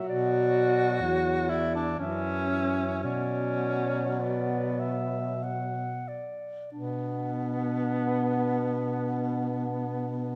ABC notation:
X:1
M:3/4
L:1/16
Q:1/4=49
K:Bm
V:1 name="Clarinet"
d4 c2 d2 e4 | d4 d2 e2 f2 d2 | D12 |]
V:2 name="Alto saxophone"
F6 E D C4 | C4 B,4 z4 | B,12 |]
V:3 name="Tenor saxophone" clef=bass
F,6 z2 E,2 E,2 | F,8- F,2 z2 | B,12 |]
V:4 name="Baritone saxophone" clef=bass
B,,4 E,,4 F,,4 | B,,8- B,,2 z2 | B,,12 |]